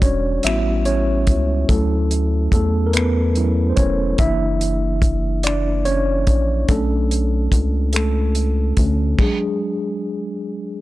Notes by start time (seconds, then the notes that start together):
Already playing: E1 G3 D4 F#4 D5
0.02 C#4 C#5, kick, closed hi-hat
0.43 A1 G3 B3 C#4 E4 F#4 E5, finger snap, closed hi-hat
0.85 C#4 C#5, closed hi-hat
1.27 C#2, kick, closed hi-hat
1.69 D2 F#3 A3 C#4 E4 A4, kick, closed hi-hat
2.11 closed hi-hat
2.52 E2 A3 A4, kick, closed hi-hat
2.87 A#4
2.93 B3 B4, finger snap, closed hi-hat
3.35 F#3 C#4 E4, closed hi-hat
3.70 C5
3.76 E1 C#4 C#5, kick, closed hi-hat
4.18 F#1 E3 A#3 D4 E4 E5, kick, closed hi-hat
4.61 closed hi-hat
5.02 kick, closed hi-hat
5.43 D4 D5, finger snap, closed hi-hat
5.85 C#4 C#5, closed hi-hat
6.27 A#1, kick, closed hi-hat
6.69 B1 A3 C#4 D4 A4, kick, closed hi-hat
7.11 closed hi-hat
7.52 C#2, kick, closed hi-hat
7.93 A3 A4, finger snap, closed hi-hat
8.35 closed hi-hat
8.77 D2 D3 A3 C#4, kick, closed hi-hat
9.19 F#3 G#3 D4 G#4, kick, crash